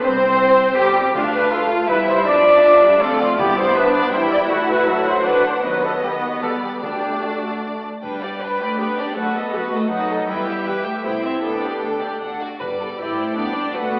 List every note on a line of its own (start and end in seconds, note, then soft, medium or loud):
0.03 0.76 C2 medium
0.03 0.39 C4 medium
0.03 0.76 C4 medium
0.03 0.76 C5 medium
0.03 0.77 C5 medium
0.40 1.13 C4 medium
0.77 1.14 G1 medium
0.77 1.14 G3 medium
0.77 1.15 G4 medium
0.77 1.14 G4 medium
0.77 1.15 G4 medium
1.14 1.85 D2 medium
1.14 1.66 D3 medium
1.14 1.85 A3 medium
1.14 1.51 D4 medium
1.14 1.50 D4 medium
1.14 1.23 F4 medium
1.14 1.85 F5 medium
1.33 1.51 B4 medium
1.51 1.87 F4 medium
1.51 1.68 F4 medium
1.51 1.89 A4 medium
1.69 1.88 F4 medium
1.87 2.25 E2 medium
1.87 2.27 G3 medium
1.87 2.26 E4 medium
1.87 2.25 E4 medium
1.87 1.97 B4 medium
1.87 3.01 E5 medium
2.07 2.26 C5 medium
2.26 3.38 F2 medium
2.26 2.63 F3 medium
2.26 3.01 D4 medium
2.26 2.61 D4 medium
2.26 2.99 D5 loud
2.63 2.82 F3 medium
2.63 3.00 D4 medium
2.83 3.02 G3 medium
3.00 3.39 A3 medium
3.00 3.38 C4 medium
3.00 3.39 F4 medium
3.00 3.20 A4 medium
3.00 3.36 D5 medium
3.19 3.38 F4 medium
3.38 4.12 G2 medium
3.38 3.90 G2 medium
3.38 3.75 B3 medium
3.38 4.13 B3 medium
3.38 3.75 E4 medium
3.38 3.57 G4 medium
3.38 3.74 D5 medium
3.57 3.75 C5 medium
3.75 4.11 D4 medium
3.75 4.12 D4 medium
3.75 4.12 B4 medium
3.75 3.94 E5 medium
3.94 4.12 D5 medium
4.12 4.50 E2 medium
4.12 4.50 G3 medium
4.12 4.50 E4 medium
4.12 5.24 E4 medium
4.12 4.21 C5 medium
4.12 4.49 G5 medium
4.31 4.39 D5 medium
4.49 5.64 D2 medium
4.49 4.88 A3 medium
4.49 5.26 F#4 medium
4.49 4.58 F#4 medium
4.49 4.86 F#5 medium
4.69 4.87 B4 medium
4.88 5.63 F#3 medium
4.88 5.07 A4 medium
4.88 5.62 F#5 medium
5.07 5.26 C5 medium
5.25 5.64 D4 medium
5.25 5.63 D4 medium
5.25 5.45 B4 medium
5.45 5.54 C5 medium
5.64 6.40 D#2 medium
5.64 6.02 F#3 medium
5.64 6.01 B3 medium
5.64 6.83 B3 medium
5.64 5.83 B4 medium
5.64 6.42 D#5 medium
5.83 5.92 A4 medium
6.02 6.81 B3 soft
6.02 6.42 B3 soft
6.02 6.11 G4 medium
6.21 6.41 F#4 medium
6.41 6.83 E2 soft
6.41 6.83 G3 soft
6.41 6.50 A4 medium
6.41 6.82 D5 soft
6.62 6.81 G4 soft
6.82 7.83 D2 soft
6.82 7.40 D3 medium
6.82 7.84 A3 soft
6.82 7.84 D4 soft
6.82 7.23 G4 medium
6.82 7.82 D5 soft
7.23 7.63 F#4 soft
8.03 8.35 G2 soft
8.03 8.57 G2 soft
8.03 8.56 G3 soft
8.03 8.21 D4 soft
8.03 8.21 B4 soft
8.03 8.21 G5 soft
8.22 8.42 G4 soft
8.22 8.41 D5 soft
8.22 8.43 D5 soft
8.40 8.73 G2 soft
8.40 8.60 D4 soft
8.40 8.60 B4 soft
8.40 8.77 B4 soft
8.40 8.61 G5 soft
8.60 8.79 A3 medium
8.60 8.79 G4 soft
8.60 8.79 D5 soft
8.60 8.80 D5 soft
8.79 9.11 G2 soft
8.79 8.98 B3 medium
8.79 8.97 D4 soft
8.79 9.17 G4 soft
8.79 8.97 B4 soft
8.79 8.97 G5 soft
8.98 9.17 D4 medium
8.98 9.17 G4 soft
8.98 9.17 D5 soft
9.16 9.49 F#2 medium
9.16 9.36 A3 medium
9.16 9.34 F#4 soft
9.16 9.55 A4 soft
9.16 9.35 B4 soft
9.16 9.34 F#5 soft
9.35 9.72 B3 medium
9.35 9.54 A4 soft
9.35 9.55 D#5 soft
9.54 9.85 F#2 medium
9.54 9.92 F#4 medium
9.54 9.73 F#4 soft
9.54 9.74 B4 soft
9.54 9.73 F#5 soft
9.72 9.92 A3 medium
9.72 9.92 A4 soft
9.72 9.91 D#5 soft
9.91 10.23 F#2 medium
9.91 10.28 F#3 medium
9.91 10.28 D#4 soft
9.91 10.10 F#4 soft
9.91 10.09 B4 soft
9.91 10.08 F#5 soft
10.10 10.29 A4 soft
10.10 10.28 D#5 soft
10.28 10.60 E2 medium
10.28 10.85 G3 medium
10.28 10.46 E4 soft
10.28 10.67 E4 soft
10.28 10.46 B4 soft
10.28 10.46 G5 soft
10.47 10.66 G4 soft
10.47 10.67 E5 soft
10.66 10.98 E2 medium
10.66 10.85 E4 soft
10.66 11.04 G4 soft
10.66 10.85 B4 soft
10.66 10.86 G5 soft
10.84 11.04 A3 medium
10.84 11.04 G4 soft
10.84 11.05 E5 soft
11.03 11.37 C2 soft
11.03 11.24 B3 medium
11.03 11.22 E4 soft
11.03 11.43 E4 soft
11.03 11.22 C5 soft
11.03 11.23 G5 soft
11.22 11.42 C4 medium
11.22 11.42 G4 soft
11.22 11.42 E5 soft
11.22 11.44 E5 soft
11.41 11.76 D2 soft
11.41 11.81 B3 medium
11.41 12.41 D4 soft
11.41 11.60 A4 soft
11.41 11.61 G5 soft
11.62 11.82 G4 soft
11.62 11.82 D5 soft
11.82 12.15 D2 soft
11.82 12.21 A3 soft
11.82 12.02 A4 soft
11.82 12.02 G5 soft
12.01 12.21 G4 soft
12.01 12.21 D5 soft
12.21 12.54 D2 soft
12.21 12.39 D4 soft
12.21 12.39 A4 soft
12.21 12.39 F#5 soft
12.41 12.60 F#4 soft
12.41 12.60 D5 soft
12.60 12.96 G1 soft
12.60 13.14 G2 medium
12.60 13.13 G3 medium
12.60 12.68 B4 soft
12.60 12.96 D5 soft
12.80 12.88 A4 soft
12.99 13.36 A1 soft
12.99 13.34 E4 medium
12.99 13.36 G4 soft
12.99 13.18 B4 soft
12.99 13.36 D5 soft
13.17 13.36 A3 medium
13.17 13.36 C5 soft
13.36 13.73 G1 soft
13.36 13.55 B3 medium
13.36 13.74 D4 soft
13.36 13.74 G4 soft
13.36 13.73 D5 soft
13.36 13.74 D5 soft
13.55 13.74 D4 medium
13.73 14.00 F#1 soft
13.73 13.92 A3 medium
13.73 14.00 F#4 medium
13.73 14.00 A4 soft
13.73 14.00 B4 soft
13.73 14.00 F#5 soft
13.92 14.00 B3 medium